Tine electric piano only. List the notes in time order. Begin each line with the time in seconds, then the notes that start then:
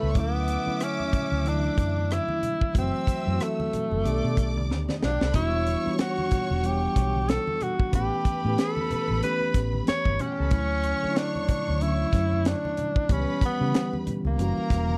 Already playing: C#3 G3 A3 B3 D4 E4
0.15 D3 F#3 A3 C#4 E4
0.65 D3 F#3 A3 C#4 E4
1.44 D3 E3 A3 D4 E4
1.51 F#3
2.74 E3 F#3 A3 C4 F#4
3.25 E3 F#3 A3 C4 E4
3.34 F#4
4.03 D#3 A3 B3 D4 G4
5.33 E3 G3 B3 D4 F#4
5.85 E3 G3 B3 D4 F4
5.94 F#4
6.63 E3 G3 B3 D4 F#5
7.92 E3 A3 B3 C#4 G4
8.44 E3 A3 B3 C#4 G4
9.22 E3 A3 B3 C#4 G4
10.51 D3 F#3 A3 C#4 E4
11.02 D3 F#3 A3 D4 C#5
11.11 E4
11.81 D3 F#3 A3 C#4 E4
13.09 E3 G3 B3 C#4 G4
13.60 D3 G3 B3 C#4 G4
13.66 E3
14.38 E3 G3 A#3 C#4 F#4